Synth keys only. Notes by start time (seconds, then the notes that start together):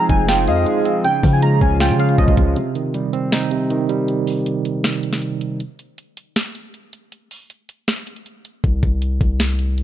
0.10 G#5
0.28 G5
0.48 F5
1.04 G5
1.33 G#5
1.42 A#5
1.62 G#5
1.81 G5
1.99 F5
2.18 D#5